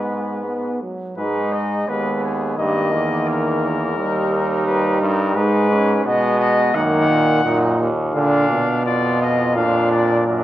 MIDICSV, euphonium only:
0, 0, Header, 1, 2, 480
1, 0, Start_track
1, 0, Key_signature, 5, "minor"
1, 0, Tempo, 710900
1, 791, Time_signature, 4, 2, 24, 8
1, 1740, Tempo, 698487
1, 7142, End_track
2, 0, Start_track
2, 0, Title_t, "Euphonium"
2, 0, Program_c, 0, 58
2, 0, Note_on_c, 0, 44, 65
2, 524, Note_off_c, 0, 44, 0
2, 789, Note_on_c, 0, 44, 78
2, 1240, Note_off_c, 0, 44, 0
2, 1268, Note_on_c, 0, 39, 77
2, 1732, Note_off_c, 0, 39, 0
2, 1741, Note_on_c, 0, 43, 93
2, 1978, Note_on_c, 0, 40, 81
2, 1988, Note_off_c, 0, 43, 0
2, 2697, Note_on_c, 0, 39, 93
2, 2708, Note_off_c, 0, 40, 0
2, 3410, Note_off_c, 0, 39, 0
2, 3414, Note_on_c, 0, 43, 102
2, 3650, Note_on_c, 0, 44, 99
2, 3661, Note_off_c, 0, 43, 0
2, 4126, Note_off_c, 0, 44, 0
2, 4130, Note_on_c, 0, 47, 103
2, 4598, Note_off_c, 0, 47, 0
2, 4607, Note_on_c, 0, 42, 84
2, 4842, Note_off_c, 0, 42, 0
2, 4849, Note_on_c, 0, 46, 91
2, 5081, Note_off_c, 0, 46, 0
2, 5085, Note_on_c, 0, 42, 80
2, 5322, Note_off_c, 0, 42, 0
2, 5325, Note_on_c, 0, 39, 89
2, 5562, Note_off_c, 0, 39, 0
2, 5571, Note_on_c, 0, 46, 89
2, 5878, Note_off_c, 0, 46, 0
2, 6052, Note_on_c, 0, 41, 83
2, 6994, Note_off_c, 0, 41, 0
2, 7023, Note_on_c, 0, 42, 79
2, 7142, Note_off_c, 0, 42, 0
2, 7142, End_track
0, 0, End_of_file